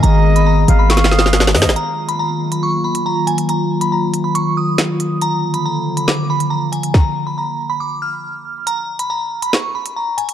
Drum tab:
HH |x--------x--------x-----x-x-x-------x-----o-----|x--------x-----------x-----------x--------x--x--|x--------x--------x-----x-----------x-----x-----|x--------x-----------x-----------x--------x--x--|
SD |------------------------o-o-o-o-o-o-o-o-o-o-o-o-|------------------------------------------------|------------------------------------o-----------|------------------------o-----------------------|
BD |------------------------------------------------|------------------------------------------------|------------------------------------------------|------------------------------------------------|

HH |------------------------------------------------|x--------x-----------x-----------x--------x--x--|
SD |o-----------------------------------------------|------------------------o-----------------------|
BD |o-----------------------------------------------|------------------------------------------------|